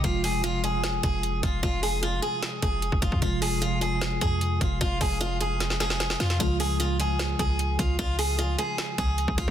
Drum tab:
HH |x-o-x-x-x-x-x-x-|x-o-x-x-x-x-x-x-|x-o-x-x-x-x-x-x-|x-o-x-x-x-x-x-x-|
SD |--------o-------|--------o-------|--------o-------|--------oooooooo|
BD |o---------o---o-|o---------o--ooo|o---------o---o-|o-o-------------|

HH |x-o-x-x-x-x-x-x-|x-o-x-x-x-x-x-x-|
SD |--------o-------|--------o-------|
BD |o---------o---o-|o---------o--oo-|